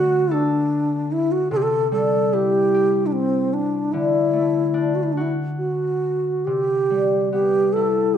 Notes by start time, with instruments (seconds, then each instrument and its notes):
Already playing: harp D3 A3 C4 D4 F#4, bansuri F#4
0.31 bansuri D4, harp A4
1.12 bansuri E4
1.32 bansuri F#4
1.51 harp C3, bansuri A4
1.57 bansuri G4
1.62 bansuri A4
1.92 harp G3, bansuri A4
2.33 harp E4, bansuri G4
2.74 harp G4
3.06 bansuri D4
3.13 bansuri C4
3.53 bansuri D4
3.92 harp D3, bansuri E4
4.33 harp A3
4.74 harp D4
4.95 bansuri F#4
5.03 bansuri E4
5.13 bansuri D4
5.17 harp F#4
5.21 bansuri E4
5.58 bansuri F#4
6.45 harp C3, bansuri G4
6.90 harp G3
7.32 harp B3, bansuri G4
7.73 harp E4, bansuri A4